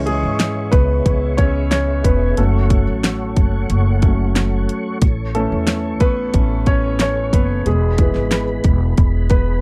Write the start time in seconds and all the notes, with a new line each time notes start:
Already playing: C#2 E3 G#3 C#4 G#4 C#5 E5 C#6
0.06 G#3 G#4, closed hi-hat
0.24 G#2
0.40 snare, closed hi-hat
0.72 C#2 B3 B4, kick, closed hi-hat
1.06 C#2, kick, closed hi-hat
1.37 C#4 C#5, kick, closed hi-hat
1.71 C#4 C#5, snare, closed hi-hat
2.04 E1 B3 B4, kick, closed hi-hat
2.37 F#1 F#3 A3 C#4 A4 F#5, closed hi-hat
2.70 kick, closed hi-hat
2.88 A1
3.04 snare, closed hi-hat
3.36 F#1, kick, closed hi-hat
3.70 F#1, closed hi-hat
4.02 F#3 A3 C#4, kick, closed hi-hat
4.36 snare, closed hi-hat
4.69 closed hi-hat
5.02 A1 C#5, kick, closed hi-hat
5.35 E3 A3 C#4 A4, closed hi-hat
5.52 E2
5.67 snare, closed hi-hat
6.00 A1 B3 B4, kick, closed hi-hat
6.34 A1 E3 A3 C#4, kick, closed hi-hat
6.66 C#4 C#5, kick, closed hi-hat
7.00 C#4 C#5, snare, closed hi-hat
7.33 F#1 B3 B4, kick, closed hi-hat
7.65 E1 G#3 G#4 B4 B5, closed hi-hat
7.98 E3 G#3 B3, kick, closed hi-hat
8.15 G#1, snare
8.31 snare, closed hi-hat
8.64 E1, kick, closed hi-hat
8.97 E1, kick, closed hi-hat
9.30 B3 B4, kick, closed hi-hat